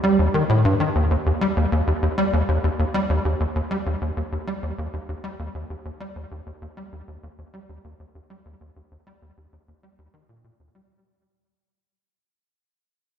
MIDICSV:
0, 0, Header, 1, 2, 480
1, 0, Start_track
1, 0, Tempo, 612245
1, 866, Time_signature, 4, 2, 24, 8
1, 10335, End_track
2, 0, Start_track
2, 0, Title_t, "Analog synth bass"
2, 0, Program_c, 0, 38
2, 27, Note_on_c, 0, 55, 71
2, 140, Note_off_c, 0, 55, 0
2, 147, Note_on_c, 0, 39, 71
2, 222, Note_off_c, 0, 39, 0
2, 267, Note_on_c, 0, 51, 73
2, 343, Note_off_c, 0, 51, 0
2, 387, Note_on_c, 0, 45, 94
2, 500, Note_off_c, 0, 45, 0
2, 507, Note_on_c, 0, 43, 98
2, 582, Note_off_c, 0, 43, 0
2, 627, Note_on_c, 0, 51, 71
2, 702, Note_off_c, 0, 51, 0
2, 747, Note_on_c, 0, 39, 70
2, 860, Note_off_c, 0, 39, 0
2, 867, Note_on_c, 0, 39, 79
2, 912, Note_off_c, 0, 39, 0
2, 988, Note_on_c, 0, 39, 71
2, 1033, Note_off_c, 0, 39, 0
2, 1108, Note_on_c, 0, 55, 71
2, 1152, Note_off_c, 0, 55, 0
2, 1227, Note_on_c, 0, 39, 72
2, 1302, Note_off_c, 0, 39, 0
2, 1347, Note_on_c, 0, 39, 79
2, 1422, Note_off_c, 0, 39, 0
2, 1467, Note_on_c, 0, 39, 72
2, 1512, Note_off_c, 0, 39, 0
2, 1587, Note_on_c, 0, 39, 72
2, 1632, Note_off_c, 0, 39, 0
2, 1707, Note_on_c, 0, 55, 74
2, 1752, Note_off_c, 0, 55, 0
2, 1827, Note_on_c, 0, 39, 75
2, 1902, Note_off_c, 0, 39, 0
2, 1947, Note_on_c, 0, 39, 72
2, 2022, Note_off_c, 0, 39, 0
2, 2067, Note_on_c, 0, 39, 70
2, 2112, Note_off_c, 0, 39, 0
2, 2187, Note_on_c, 0, 39, 71
2, 2232, Note_off_c, 0, 39, 0
2, 2307, Note_on_c, 0, 55, 77
2, 2352, Note_off_c, 0, 55, 0
2, 2426, Note_on_c, 0, 39, 74
2, 2502, Note_off_c, 0, 39, 0
2, 2546, Note_on_c, 0, 39, 69
2, 2622, Note_off_c, 0, 39, 0
2, 2667, Note_on_c, 0, 39, 73
2, 2712, Note_off_c, 0, 39, 0
2, 2787, Note_on_c, 0, 39, 76
2, 2832, Note_off_c, 0, 39, 0
2, 2907, Note_on_c, 0, 55, 69
2, 2952, Note_off_c, 0, 55, 0
2, 3026, Note_on_c, 0, 39, 70
2, 3102, Note_off_c, 0, 39, 0
2, 3146, Note_on_c, 0, 39, 71
2, 3222, Note_off_c, 0, 39, 0
2, 3267, Note_on_c, 0, 39, 78
2, 3312, Note_off_c, 0, 39, 0
2, 3387, Note_on_c, 0, 39, 70
2, 3432, Note_off_c, 0, 39, 0
2, 3507, Note_on_c, 0, 55, 72
2, 3552, Note_off_c, 0, 55, 0
2, 3627, Note_on_c, 0, 39, 72
2, 3702, Note_off_c, 0, 39, 0
2, 3747, Note_on_c, 0, 39, 76
2, 3822, Note_off_c, 0, 39, 0
2, 3867, Note_on_c, 0, 39, 70
2, 3912, Note_off_c, 0, 39, 0
2, 3987, Note_on_c, 0, 39, 71
2, 4032, Note_off_c, 0, 39, 0
2, 4107, Note_on_c, 0, 55, 74
2, 4152, Note_off_c, 0, 55, 0
2, 4226, Note_on_c, 0, 39, 74
2, 4302, Note_off_c, 0, 39, 0
2, 4347, Note_on_c, 0, 39, 72
2, 4422, Note_off_c, 0, 39, 0
2, 4467, Note_on_c, 0, 39, 68
2, 4512, Note_off_c, 0, 39, 0
2, 4587, Note_on_c, 0, 39, 71
2, 4632, Note_off_c, 0, 39, 0
2, 4707, Note_on_c, 0, 55, 80
2, 4752, Note_off_c, 0, 55, 0
2, 4826, Note_on_c, 0, 39, 72
2, 4902, Note_off_c, 0, 39, 0
2, 4947, Note_on_c, 0, 39, 71
2, 5022, Note_off_c, 0, 39, 0
2, 5067, Note_on_c, 0, 39, 70
2, 5112, Note_off_c, 0, 39, 0
2, 5186, Note_on_c, 0, 39, 78
2, 5232, Note_off_c, 0, 39, 0
2, 5308, Note_on_c, 0, 55, 72
2, 5352, Note_off_c, 0, 55, 0
2, 5428, Note_on_c, 0, 39, 71
2, 5503, Note_off_c, 0, 39, 0
2, 5547, Note_on_c, 0, 39, 73
2, 5623, Note_off_c, 0, 39, 0
2, 5667, Note_on_c, 0, 39, 74
2, 5712, Note_off_c, 0, 39, 0
2, 5787, Note_on_c, 0, 39, 68
2, 5832, Note_off_c, 0, 39, 0
2, 5908, Note_on_c, 0, 55, 68
2, 5953, Note_off_c, 0, 55, 0
2, 6028, Note_on_c, 0, 39, 73
2, 6103, Note_off_c, 0, 39, 0
2, 6148, Note_on_c, 0, 39, 74
2, 6223, Note_off_c, 0, 39, 0
2, 6268, Note_on_c, 0, 39, 71
2, 6313, Note_off_c, 0, 39, 0
2, 6388, Note_on_c, 0, 39, 67
2, 6432, Note_off_c, 0, 39, 0
2, 6508, Note_on_c, 0, 55, 70
2, 6552, Note_off_c, 0, 55, 0
2, 6627, Note_on_c, 0, 39, 78
2, 6703, Note_off_c, 0, 39, 0
2, 6747, Note_on_c, 0, 39, 72
2, 6822, Note_off_c, 0, 39, 0
2, 6867, Note_on_c, 0, 39, 69
2, 6912, Note_off_c, 0, 39, 0
2, 6988, Note_on_c, 0, 39, 70
2, 7033, Note_off_c, 0, 39, 0
2, 7108, Note_on_c, 0, 55, 77
2, 7153, Note_off_c, 0, 55, 0
2, 7227, Note_on_c, 0, 39, 70
2, 7302, Note_off_c, 0, 39, 0
2, 7347, Note_on_c, 0, 39, 70
2, 7422, Note_off_c, 0, 39, 0
2, 7468, Note_on_c, 0, 39, 73
2, 7512, Note_off_c, 0, 39, 0
2, 7587, Note_on_c, 0, 39, 72
2, 7632, Note_off_c, 0, 39, 0
2, 7708, Note_on_c, 0, 55, 68
2, 7753, Note_off_c, 0, 55, 0
2, 7827, Note_on_c, 0, 39, 94
2, 7903, Note_off_c, 0, 39, 0
2, 7947, Note_on_c, 0, 51, 72
2, 8022, Note_off_c, 0, 51, 0
2, 8067, Note_on_c, 0, 46, 72
2, 8180, Note_off_c, 0, 46, 0
2, 8187, Note_on_c, 0, 46, 70
2, 8232, Note_off_c, 0, 46, 0
2, 8307, Note_on_c, 0, 39, 68
2, 8383, Note_off_c, 0, 39, 0
2, 8427, Note_on_c, 0, 55, 70
2, 8472, Note_off_c, 0, 55, 0
2, 10335, End_track
0, 0, End_of_file